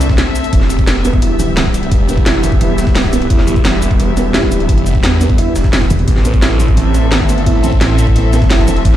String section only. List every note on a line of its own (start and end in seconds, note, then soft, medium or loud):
0.00 0.53 C4 medium
0.00 1.24 A4 medium
0.00 6.08 E5 medium
0.53 6.08 B3 medium
0.57 7.16 G4 medium
6.08 8.97 C4 medium
6.21 8.97 A4 medium
6.69 8.97 E5 medium